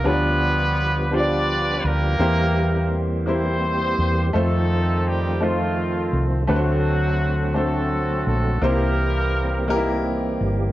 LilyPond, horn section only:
\new Staff \with { instrumentName = "Horn section" } { \time 6/8 \key c \dorian \tempo 4. = 56 << { <b b'>4. <d' d''>4 <bes bes'>8~ | <bes bes'>4 r8 <c' c''>4. | <a a'>4 <g g'>8 <f f'>4 r8 | <fis fis'>4. <a a'>4 <a a'>8 |
<bes bes'>2 r4 | } \\ { <f' g'>4. <f' b'>4 g'8~ | g'4 r8 g'4. | <c' ees'>4. <a c'>4. | <a c'>4. <c' fis'>4. |
<e' g'>2 r4 | } >> }